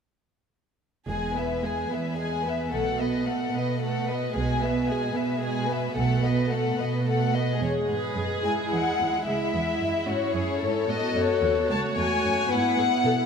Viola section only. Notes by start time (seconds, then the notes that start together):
1.07 G#3
1.35 B3
1.62 G#3
1.89 B3
2.17 G#3
2.45 B3
2.72 A3
2.99 B3
3.28 A3
3.55 B3
3.81 A3
4.08 B3
4.35 G#3
4.63 B3
4.88 G#3
5.15 B3
5.41 G#3
5.68 B3
5.95 A3
6.23 B3
6.51 A3
6.78 B3
7.06 A3
7.34 B3
7.63 G#3 G#4
8.45 E4
9.27 E4
10.07 C#4
10.88 B3 F#4
11.68 A3 F#4
12.49 B3 E4